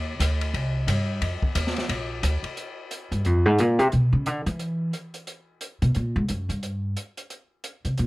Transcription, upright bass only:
0, 0, Header, 1, 3, 480
1, 0, Start_track
1, 0, Tempo, 338600
1, 1720, Time_signature, 4, 2, 24, 8
1, 11439, End_track
2, 0, Start_track
2, 0, Title_t, "Upright bass"
2, 0, Program_c, 0, 32
2, 0, Note_on_c, 0, 39, 80
2, 263, Note_off_c, 0, 39, 0
2, 275, Note_on_c, 0, 38, 82
2, 743, Note_off_c, 0, 38, 0
2, 759, Note_on_c, 0, 36, 77
2, 1225, Note_off_c, 0, 36, 0
2, 1238, Note_on_c, 0, 43, 79
2, 1704, Note_off_c, 0, 43, 0
2, 1721, Note_on_c, 0, 41, 76
2, 1995, Note_off_c, 0, 41, 0
2, 2198, Note_on_c, 0, 39, 74
2, 2664, Note_off_c, 0, 39, 0
2, 2678, Note_on_c, 0, 34, 69
2, 3145, Note_off_c, 0, 34, 0
2, 3161, Note_on_c, 0, 38, 75
2, 3431, Note_off_c, 0, 38, 0
2, 4416, Note_on_c, 0, 43, 69
2, 4617, Note_off_c, 0, 43, 0
2, 4617, Note_on_c, 0, 41, 61
2, 4900, Note_off_c, 0, 41, 0
2, 4900, Note_on_c, 0, 44, 78
2, 5100, Note_off_c, 0, 44, 0
2, 5100, Note_on_c, 0, 46, 65
2, 5370, Note_off_c, 0, 46, 0
2, 5370, Note_on_c, 0, 48, 77
2, 5552, Note_off_c, 0, 48, 0
2, 5573, Note_on_c, 0, 47, 76
2, 5842, Note_off_c, 0, 47, 0
2, 5850, Note_on_c, 0, 49, 81
2, 6047, Note_off_c, 0, 49, 0
2, 6047, Note_on_c, 0, 50, 67
2, 6319, Note_off_c, 0, 50, 0
2, 6328, Note_on_c, 0, 52, 84
2, 6951, Note_off_c, 0, 52, 0
2, 8250, Note_on_c, 0, 47, 85
2, 8432, Note_off_c, 0, 47, 0
2, 8449, Note_on_c, 0, 46, 76
2, 8721, Note_off_c, 0, 46, 0
2, 8730, Note_on_c, 0, 44, 86
2, 8912, Note_off_c, 0, 44, 0
2, 8926, Note_on_c, 0, 42, 66
2, 9191, Note_off_c, 0, 42, 0
2, 9199, Note_on_c, 0, 43, 67
2, 9824, Note_off_c, 0, 43, 0
2, 11123, Note_on_c, 0, 48, 60
2, 11307, Note_off_c, 0, 48, 0
2, 11329, Note_on_c, 0, 46, 75
2, 11439, Note_off_c, 0, 46, 0
2, 11439, End_track
3, 0, Start_track
3, 0, Title_t, "Muted upright bass strokes"
3, 2019, Note_on_c, 9, 29, 37
3, 2161, Note_off_c, 9, 29, 0
3, 3439, Note_on_c, 9, 29, 33
3, 3581, Note_off_c, 9, 29, 0
3, 11439, End_track
0, 0, End_of_file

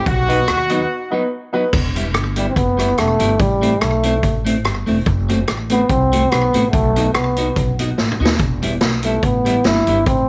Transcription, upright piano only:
0, 0, Header, 1, 2, 480
1, 0, Start_track
1, 0, Key_signature, 1, "minor"
1, 0, Tempo, 416956
1, 69, Time_signature, 4, 2, 24, 8
1, 11845, End_track
2, 0, Start_track
2, 0, Title_t, "Upright piano"
2, 0, Program_c, 0, 0
2, 322, Note_on_c, 0, 59, 92
2, 326, Note_on_c, 0, 63, 86
2, 329, Note_on_c, 0, 66, 81
2, 335, Note_on_c, 0, 71, 102
2, 491, Note_off_c, 0, 59, 0
2, 494, Note_off_c, 0, 63, 0
2, 495, Note_off_c, 0, 66, 0
2, 498, Note_off_c, 0, 71, 0
2, 801, Note_on_c, 0, 59, 90
2, 805, Note_on_c, 0, 63, 86
2, 811, Note_on_c, 0, 66, 77
2, 815, Note_on_c, 0, 71, 93
2, 971, Note_off_c, 0, 59, 0
2, 973, Note_off_c, 0, 63, 0
2, 976, Note_off_c, 0, 66, 0
2, 978, Note_off_c, 0, 71, 0
2, 1272, Note_on_c, 0, 59, 83
2, 1279, Note_on_c, 0, 63, 83
2, 1284, Note_on_c, 0, 66, 80
2, 1286, Note_on_c, 0, 71, 96
2, 1447, Note_off_c, 0, 59, 0
2, 1451, Note_off_c, 0, 63, 0
2, 1453, Note_off_c, 0, 66, 0
2, 1454, Note_off_c, 0, 71, 0
2, 1758, Note_on_c, 0, 59, 87
2, 1758, Note_on_c, 0, 63, 84
2, 1764, Note_on_c, 0, 66, 84
2, 1769, Note_on_c, 0, 71, 104
2, 1930, Note_off_c, 0, 59, 0
2, 1930, Note_off_c, 0, 63, 0
2, 1933, Note_off_c, 0, 66, 0
2, 1935, Note_off_c, 0, 71, 0
2, 11845, End_track
0, 0, End_of_file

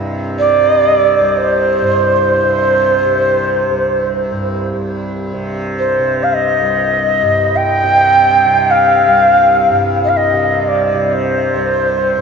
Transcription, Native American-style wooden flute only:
0, 0, Header, 1, 2, 480
1, 0, Start_track
1, 0, Key_signature, -3, "minor"
1, 0, Tempo, 500000
1, 11724, End_track
2, 0, Start_track
2, 0, Title_t, "Native American-style wooden flute"
2, 0, Program_c, 0, 77
2, 368, Note_on_c, 0, 74, 81
2, 1229, Note_off_c, 0, 74, 0
2, 1229, Note_on_c, 0, 74, 56
2, 1317, Note_on_c, 0, 72, 87
2, 1332, Note_off_c, 0, 74, 0
2, 4336, Note_off_c, 0, 72, 0
2, 5556, Note_on_c, 0, 72, 64
2, 5981, Note_on_c, 0, 77, 54
2, 5995, Note_off_c, 0, 72, 0
2, 6080, Note_on_c, 0, 75, 74
2, 6095, Note_off_c, 0, 77, 0
2, 7259, Note_on_c, 0, 79, 95
2, 7273, Note_off_c, 0, 75, 0
2, 8357, Note_on_c, 0, 77, 83
2, 8371, Note_off_c, 0, 79, 0
2, 9380, Note_off_c, 0, 77, 0
2, 9640, Note_on_c, 0, 75, 67
2, 9683, Note_on_c, 0, 77, 61
2, 9698, Note_off_c, 0, 75, 0
2, 9759, Note_on_c, 0, 75, 71
2, 9773, Note_off_c, 0, 77, 0
2, 10249, Note_on_c, 0, 74, 64
2, 10263, Note_off_c, 0, 75, 0
2, 10621, Note_off_c, 0, 74, 0
2, 10621, Note_on_c, 0, 74, 48
2, 10682, Note_on_c, 0, 72, 67
2, 10696, Note_off_c, 0, 74, 0
2, 11724, Note_off_c, 0, 72, 0
2, 11724, End_track
0, 0, End_of_file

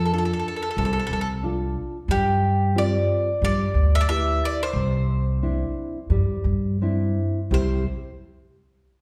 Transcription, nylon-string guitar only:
0, 0, Header, 1, 2, 480
1, 0, Start_track
1, 0, Key_signature, 0, "major"
1, 0, Tempo, 662252
1, 1517, Time_signature, 4, 2, 24, 8
1, 3922, Tempo, 700935
1, 5362, Tempo, 663717
1, 6446, End_track
2, 0, Start_track
2, 0, Title_t, "Nylon-string guitar"
2, 0, Program_c, 0, 24
2, 90, Note_on_c, 0, 62, 51
2, 94, Note_on_c, 0, 69, 56
2, 95, Note_on_c, 0, 65, 49
2, 468, Note_off_c, 0, 62, 0
2, 469, Note_off_c, 0, 65, 0
2, 470, Note_off_c, 0, 69, 0
2, 564, Note_on_c, 0, 48, 65
2, 1027, Note_off_c, 0, 48, 0
2, 1037, Note_on_c, 0, 62, 53
2, 1044, Note_on_c, 0, 65, 45
2, 1049, Note_on_c, 0, 69, 53
2, 1420, Note_off_c, 0, 62, 0
2, 1425, Note_off_c, 0, 65, 0
2, 1426, Note_off_c, 0, 69, 0
2, 1524, Note_on_c, 0, 55, 70
2, 1985, Note_off_c, 0, 55, 0
2, 1995, Note_on_c, 0, 60, 53
2, 1999, Note_on_c, 0, 65, 47
2, 2000, Note_on_c, 0, 67, 54
2, 2379, Note_off_c, 0, 60, 0
2, 2381, Note_off_c, 0, 67, 0
2, 2382, Note_off_c, 0, 65, 0
2, 2482, Note_on_c, 0, 55, 73
2, 2943, Note_off_c, 0, 55, 0
2, 2964, Note_on_c, 0, 64, 51
2, 2967, Note_on_c, 0, 67, 46
2, 2969, Note_on_c, 0, 71, 58
2, 3345, Note_off_c, 0, 64, 0
2, 3346, Note_off_c, 0, 67, 0
2, 3347, Note_off_c, 0, 71, 0
2, 3446, Note_on_c, 0, 48, 68
2, 3912, Note_off_c, 0, 48, 0
2, 3932, Note_on_c, 0, 60, 51
2, 3934, Note_on_c, 0, 62, 46
2, 3935, Note_on_c, 0, 64, 55
2, 4303, Note_off_c, 0, 60, 0
2, 4303, Note_off_c, 0, 62, 0
2, 4304, Note_off_c, 0, 64, 0
2, 4400, Note_on_c, 0, 55, 66
2, 4868, Note_off_c, 0, 55, 0
2, 4883, Note_on_c, 0, 60, 47
2, 4887, Note_on_c, 0, 62, 39
2, 4890, Note_on_c, 0, 64, 51
2, 5269, Note_off_c, 0, 60, 0
2, 5270, Note_off_c, 0, 62, 0
2, 5273, Note_off_c, 0, 64, 0
2, 5355, Note_on_c, 0, 48, 53
2, 5361, Note_on_c, 0, 55, 48
2, 5364, Note_on_c, 0, 60, 46
2, 5368, Note_on_c, 0, 64, 48
2, 5368, Note_on_c, 0, 67, 60
2, 5586, Note_off_c, 0, 48, 0
2, 5591, Note_off_c, 0, 55, 0
2, 5591, Note_off_c, 0, 60, 0
2, 5591, Note_off_c, 0, 64, 0
2, 5594, Note_off_c, 0, 67, 0
2, 6446, End_track
0, 0, End_of_file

